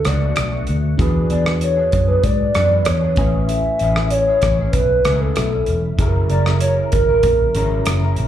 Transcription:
Already playing: reed electric piano D4 F#4 A4 B4
0.05 fingered electric bass C#2, clean electric guitar B2 A3 D4 F#4, soft synth lead D5, cross-stick, closed hi-hat
0.36 fingered electric bass B1, cross-stick, closed hi-hat
0.52 clean electric guitar A3 D4 F#4
0.67 fingered electric bass D2, closed hi-hat
0.97 fingered electric bass E2, clean electric guitar E3 B3 D4 G#4, reed electric piano D4 F#4 G#4, kick, closed hi-hat
1.02 reed electric piano B4
1.30 fingered electric bass E2, clean electric guitar E3 B3 D4 G#4, soft synth lead D5, closed hi-hat
1.46 cross-stick
1.61 soft synth lead C#5, closed hi-hat
1.76 clean electric guitar B3 D4 G#4
1.92 fingered electric bass F#2, kick, closed hi-hat
2.07 clean electric guitar B3 D4 G#4, soft synth lead B4
2.23 fingered electric bass G#2, soft synth lead D5, kick, closed hi-hat
2.54 fingered electric bass F#2, clean electric guitar E3 B3 D4 G#4, cross-stick, closed hi-hat
2.85 fingered electric bass E2, soft synth lead C#5, cross-stick, closed hi-hat
3.01 clean electric guitar B3 D4 G#4
3.15 fingered electric bass A1, clean electric guitar A3 C#4 E4 G#4, reed electric piano C#4 E4 G#5, kick, closed hi-hat
3.20 reed electric piano B4
3.46 soft synth lead E5, closed hi-hat
3.79 fingered electric bass A1, clean electric guitar A3 C#4 E4 G#4, closed hi-hat
3.96 cross-stick
4.10 soft synth lead C#5, closed hi-hat
4.27 clean electric guitar C#4 E4 G#4
4.42 fingered electric bass A1, kick, cross-stick, closed hi-hat
4.58 clean electric guitar C#4 E4 G#4
4.72 fingered electric bass B1, soft synth lead B4, kick, closed hi-hat
5.05 fingered electric bass C#2, clean electric guitar A3 C#4 E4 G#4, cross-stick, closed hi-hat
5.20 soft synth lead A4
5.36 fingered electric bass B1, soft synth lead A4, cross-stick, closed hi-hat
5.53 clean electric guitar C#4 E4
5.66 fingered electric bass E1, closed hi-hat
5.97 fingered electric bass F#1, reed electric piano C#3 E4 G#4, clean electric guitar F#3 C#4 E4 A#4, kick, closed hi-hat
6.01 reed electric piano A4
6.08 reed electric piano A#4
6.29 fingered electric bass F#1, clean electric guitar F#3 E4 A#4, soft synth lead D5, closed hi-hat
6.46 cross-stick
6.60 soft synth lead C#5, closed hi-hat
6.77 clean electric guitar C#4 E4 A#4
6.92 fingered electric bass G#1, soft synth lead A#4, kick, closed hi-hat
7.08 clean electric guitar C#4 E4 A#4
7.23 fingered electric bass A#1, kick, closed hi-hat
7.54 fingered electric bass G#1, clean electric guitar F#3 C#4 E4 A#4, reed electric piano C#4 E4 G#4 C#5, closed hi-hat
7.86 fingered electric bass F#1, cross-stick, closed hi-hat
8.03 clean electric guitar C#4 E4 A#4
8.16 fingered electric bass A#1, closed hi-hat

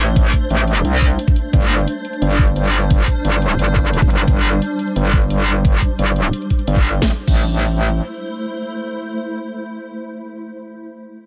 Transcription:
Already playing: wobble bass A1, synth drone A3 D4 C5
0.16 kick, closed hi-hat
0.33 kick, closed hi-hat
0.50 wobble bass A1, closed hi-hat
0.68 closed hi-hat
0.76 closed hi-hat
0.85 wobble bass C2, closed hi-hat
0.93 closed hi-hat
1.02 kick, closed hi-hat
1.10 closed hi-hat
1.19 closed hi-hat
1.28 kick, closed hi-hat
1.36 closed hi-hat
1.53 wobble bass G1, synth drone G3, kick, closed hi-hat
1.70 closed hi-hat
1.88 closed hi-hat
2.05 closed hi-hat
2.13 closed hi-hat
2.22 wobble bass G1, closed hi-hat
2.30 closed hi-hat
2.39 kick, closed hi-hat
2.48 closed hi-hat
2.56 closed hi-hat
2.65 closed hi-hat
2.73 closed hi-hat
2.90 kick, closed hi-hat
3.08 kick, closed hi-hat
3.25 wobble bass G1, closed hi-hat
3.42 closed hi-hat
3.50 closed hi-hat
3.59 wobble bass G1, closed hi-hat
3.68 closed hi-hat
3.76 kick, closed hi-hat
3.85 closed hi-hat
3.93 closed hi-hat
4.02 kick, closed hi-hat
4.10 wobble bass G1, closed hi-hat
4.28 wobble bass G1, kick, closed hi-hat
4.45 closed hi-hat
4.62 closed hi-hat
4.79 closed hi-hat
4.88 closed hi-hat
4.96 wobble bass G1, closed hi-hat
5.05 closed hi-hat
5.13 kick, closed hi-hat
5.22 closed hi-hat
5.30 closed hi-hat
5.39 closed hi-hat
5.47 closed hi-hat
5.65 kick, closed hi-hat
5.82 kick, closed hi-hat
5.99 wobble bass G1, closed hi-hat
6.16 closed hi-hat
6.25 closed hi-hat
6.33 closed hi-hat
6.42 closed hi-hat
6.50 kick, closed hi-hat
6.59 closed hi-hat
6.67 wobble bass G1, closed hi-hat
6.76 kick, closed hi-hat
6.85 closed hi-hat
7.02 wobble bass A1, synth drone A3 E4 C5, kick, snare
7.28 wobble bass A1, kick, crash

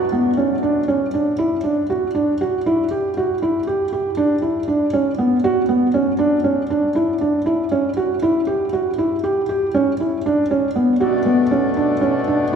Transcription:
0.12 felt piano B3
0.37 felt piano C#4
0.63 felt piano D4
0.88 felt piano C#4
1.14 felt piano D4
1.39 felt piano E4
1.64 felt piano D4
1.90 felt piano F#4
2.15 felt piano D4
2.41 felt piano F#4
2.66 felt piano E4
2.91 felt piano G4
3.17 felt piano F#4
3.42 felt piano E4
3.67 felt piano G4
3.93 felt piano G4
4.17 felt piano D4
4.42 felt piano E4
4.68 felt piano D4
4.93 felt piano C#4
5.18 felt piano B3
5.44 felt piano F#4
5.69 felt piano B3
5.94 felt piano C#4
6.19 felt piano D4
6.44 felt piano C#4
6.70 felt piano D4
6.95 felt piano E4
7.21 felt piano D4
7.46 felt piano E4
7.72 felt piano C#4
7.97 felt piano F#4
8.22 felt piano E4
8.47 felt piano G4
8.73 felt piano F#4
8.98 felt piano E4
9.24 felt piano G4
9.49 felt piano G4
9.74 felt piano C#4
10.00 felt piano E4
10.26 felt piano D4
10.51 felt piano C#4
10.76 felt piano B3
11.00 harmonium B2 A3 D4, felt piano F#4
11.26 felt piano B3
11.51 felt piano C#4
11.77 felt piano D4
12.01 felt piano C#4
12.27 felt piano D4

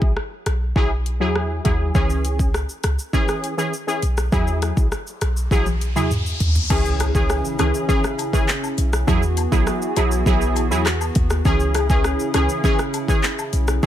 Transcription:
Already playing: synth stab F#3 E4 G#4
0.02 808-style bass B1, kick
0.17 cross-stick
0.46 808-style bass B1, cross-stick, closed hi-hat
0.76 808-style bass B1, synth stab F#3 E4 G#4, kick
1.06 closed hi-hat
1.20 808-style bass E2, synth stab F#3 E4 G#4
1.36 cross-stick
1.64 808-style bass D#2, synth stab F#3 E4 G#4, kick, closed hi-hat
1.94 808-style bass C#2, synth stab E3 C#4 G#4, kick, shaker
2.10 shaker
2.25 closed hi-hat, shaker
2.39 kick, shaker
2.54 cross-stick, shaker
2.69 shaker
2.84 808-style bass C#2, cross-stick, closed hi-hat, shaker
2.99 shaker
3.13 synth stab E3 C#4 G#4, kick, shaker
3.28 cross-stick, shaker
3.44 closed hi-hat, shaker
3.57 synth stab E3 C#4 G#4, shaker
3.73 shaker
3.87 synth stab E3 C#4 G#4, shaker
4.02 808-style bass B1, closed hi-hat, shaker
4.17 cross-stick, shaker
4.32 808-style bass E2, synth stab F#3 E4 G#4, kick, riser, shaker
4.47 shaker
4.62 cross-stick, closed hi-hat, shaker
4.77 808-style bass B1, kick, shaker
4.92 cross-stick, shaker
5.07 shaker
5.21 808-style bass B1, cross-stick, closed hi-hat, shaker
5.37 shaker
5.51 808-style bass B1, synth stab F#3 E4 G#4, kick, high tom, shaker
5.66 high tom, shaker
5.81 closed hi-hat, shaker
5.96 808-style bass E2, synth stab F#3 E4 G#4, mid tom, shaker
6.11 mid tom, shaker
6.26 shaker
6.40 808-style bass D#2, closed hi-hat, floor tom, shaker
6.55 floor tom, shaker
6.70 808-style bass C#2, analog synth pad C#3 C#4 E4 G#4, synth stab E3 C#4 G#4, kick, crash, impact, high woodblock, shaker
6.85 shaker
7.00 cross-stick, closed hi-hat, cabasa, high woodblock, shaker
7.15 synth stab E3 C#4 G#4, kick, shaker
7.30 cross-stick, shaker
7.45 shaker
7.59 808-style bass C#2, synth stab E3 C#4 G#4, cross-stick, closed hi-hat, cabasa, high woodblock, shaker
7.74 shaker
7.88 synth stab E3 C#4 G#4, kick, shaker
8.04 cross-stick, shaker
8.18 closed hi-hat, cabasa, high woodblock, shaker
8.33 synth stab E3 C#4 G#4, kick, shaker
8.48 clap, shaker
8.63 high woodblock, shaker
8.78 808-style bass B1, closed hi-hat, cabasa, shaker
8.93 cross-stick, shaker
9.07 808-style bass E2, analog synth pad E3 B3 F#4 G#4, synth stab F#3 E4 G#4, kick, high woodblock, shaker
9.22 shaker
9.37 closed hi-hat, cabasa, high woodblock, shaker
9.51 808-style bass B1, synth stab F#3 E4 G#4, kick, shaker
9.67 cross-stick, shaker
9.82 shaker
9.96 808-style bass B1, synth stab F#3 E4 G#4, closed hi-hat, cabasa, high woodblock, shaker
10.11 shaker
10.26 808-style bass B1, synth stab F#3 E4 G#4, kick, shaker
10.41 shaker
10.56 closed hi-hat, cabasa, high woodblock, shaker
10.71 808-style bass E2, synth stab F#3 E4 G#4, shaker
10.86 cross-stick, clap, shaker
11.01 high woodblock, shaker
11.15 808-style bass D#2, kick, closed hi-hat, cabasa, shaker
11.30 cross-stick, shaker
11.45 808-style bass C#2, analog synth pad C#3 C#4 E4 G#4, synth stab E3 C#4 G#4, kick, high woodblock, shaker
11.60 shaker
11.75 cross-stick, closed hi-hat, cabasa, high woodblock, shaker
11.89 synth stab E3 C#4 G#4, kick, shaker
12.04 cross-stick, shaker
12.20 shaker
12.34 808-style bass C#2, synth stab E3 C#4 G#4, cross-stick, closed hi-hat, cabasa, high woodblock, shaker
12.49 shaker
12.64 synth stab E3 C#4 G#4, kick, shaker
12.79 cross-stick, shaker
12.94 closed hi-hat, cabasa, high woodblock, shaker
13.08 synth stab E3 C#4 G#4, kick, shaker
13.23 clap, shaker
13.39 high woodblock, shaker
13.53 808-style bass B1, closed hi-hat, cabasa, shaker
13.68 cross-stick, shaker
13.83 808-style bass E2, synth stab F#3, kick, high woodblock, shaker

